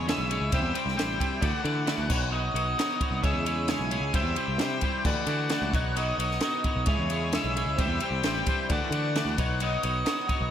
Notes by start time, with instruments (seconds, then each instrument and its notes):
Already playing: picked electric bass E2, synth bell E5
0.08 clean electric guitar C#3 G#3 C#4 E4 G#4 C#5, lead electric guitar E5, snare, ride
0.18 picked electric bass B1
0.30 clean electric guitar C#3 G#3 C#4 E4 G#4 C#5, ride
0.40 picked electric bass C#2
0.52 picked electric bass C2, clean electric guitar C3 G3 C4 E4 G4 C5, synth bell C5, lead electric guitar E5, kick, ride
0.62 picked electric bass E2
0.74 clean electric guitar C3 G3 C4 E4 G4 C5, lead electric guitar G5, ride
0.86 picked electric bass C2, snare
0.96 picked electric bass A1, clean electric guitar C3 G3 C4 E4 G4 C5, snare, ride
1.19 clean electric guitar C3 G3 C4 E4 G4 C5, kick, ride
1.41 picked electric bass D2, clean electric guitar D3 E3 A3 E4 F#4 D5, synth bell D5, lead electric guitar G5, kick, ride
1.54 lead electric guitar F#5
1.63 clean electric guitar D3 E3 A3 E4 F#4 D5, picked electric bass D3, ride
1.86 clean electric guitar D3 E3 A3 E4 F#4 D5, snare, ride
1.98 picked electric bass D2
2.09 picked electric bass B1, clean electric guitar B3 D#4 F#4 C#5, synth bell D#5, kick, crash
2.32 clean electric guitar B3 D#4 F#4 C#5, lead electric guitar D#5
2.54 picked electric bass B1, clean electric guitar B3 D#4 F#4 C#5, ride
2.78 clean electric guitar B3 D#4 F#4 C#5, snare, ride
3.01 clean electric guitar B3 D#4 F#4 C#5, kick, ride
3.11 picked electric bass C2
3.23 picked electric bass C#2, clean electric guitar C#3 G#3 C#4 E4 G#4 C#5, synth bell C#5, lead electric guitar E5, kick, ride
3.33 picked electric bass E2
3.46 clean electric guitar C#3 G#3 C#4 E4 G#4 C#5, ride
3.68 clean electric guitar C#3 G#3 C#4 E4 G#4 C#5, lead electric guitar G#5, snare, ride
3.79 picked electric bass B1
3.91 clean electric guitar C#3 G#3 C#4 E4 G#4 C#5, ride
4.01 picked electric bass C#2
4.13 picked electric bass C2, clean electric guitar C3 G3 C4 E4 G4 C5, synth bell C5, lead electric guitar E5, kick, ride
4.25 picked electric bass E2
4.36 clean electric guitar C3 G3 C4 E4 G4 C5, lead electric guitar G5, ride
4.48 picked electric bass C2
4.58 picked electric bass C3, clean electric guitar C3 G3 C4 E4 G4 C5, snare, ride
4.81 clean electric guitar C3 G3 C4 E4 G4 C5, kick, ride
5.05 picked electric bass D2, clean electric guitar D3 E3 A3 D4 E4 F#4 D5, synth bell D5, lead electric guitar F#5, kick, crash
5.27 picked electric bass D3, clean electric guitar D3 E3 A3 D4 E4 F#4 D5, ride
5.50 clean electric guitar D3 E3 A3 D4 E4 F#4 D5, snare, ride
5.62 picked electric bass C#2
5.73 picked electric bass B1, clean electric guitar B3 D#4 F#4 C#5, synth bell D#5, kick, ride
5.96 clean electric guitar B3 D#4 F#4 C#5, lead electric guitar D#5, ride
6.18 picked electric bass B1, clean electric guitar B3 D#4 F#4 C#5, ride
6.31 snare
6.40 clean electric guitar B3 D#4 F#4 C#5, snare, ride
6.64 clean electric guitar B3 D#4 F#4 C#5, kick, ride
6.75 picked electric bass B1
6.86 picked electric bass C#2, clean electric guitar C#3 G#3 C#4 E4 G#4 C#5, lead electric guitar C#5, synth bell E5, kick, ride
6.99 picked electric bass E2
7.10 clean electric guitar C#3 G#3 C#4 E4 G#4 C#5, ride
7.33 clean electric guitar C#3 G#3 C#4 E4 G#4 C#5, lead electric guitar E5, snare, ride
7.44 picked electric bass B1
7.55 clean electric guitar C#3 G#3 C#4 E4 G#4 C#5, ride
7.66 picked electric bass C#2
7.76 picked electric bass C2, clean electric guitar C3 G3 C4 E4 G4 C5, synth bell C5, kick, ride
7.81 lead electric guitar E5
7.89 picked electric bass E2
8.00 clean electric guitar C3 G3 C4 E4 G4 C5, lead electric guitar G5, ride
8.11 picked electric bass C2
8.22 picked electric bass A1, clean electric guitar C3 G3 E4, snare, ride
8.26 clean electric guitar C4 G4 C5
8.46 clean electric guitar C3 G3 C4 E4 G4 C5, kick, ride
8.69 picked electric bass D2, clean electric guitar D3 E3 A3 D4 E4 F#4 D5, synth bell D5, lead electric guitar F#5, kick, ride
8.91 picked electric bass D3, clean electric guitar D3 E3 A3 E4 F#4, ride
8.95 clean electric guitar D4 D5
9.15 clean electric guitar D3 E3 A3 D4 E4 F#4 D5, snare, ride
9.25 picked electric bass D2
9.38 picked electric bass B1, clean electric guitar B3 D#4 F#4 C#5, synth bell D#5, kick, ride
9.60 clean electric guitar B3 D#4 F#4 C#5, lead electric guitar D#5, ride
9.82 picked electric bass B1, clean electric guitar B3 D#4 F#4 C#5, ride
10.05 clean electric guitar B3 D#4 F#4 C#5, snare, ride
10.28 clean electric guitar B3 D#4 F#4 C#5, kick, ride
10.41 picked electric bass B1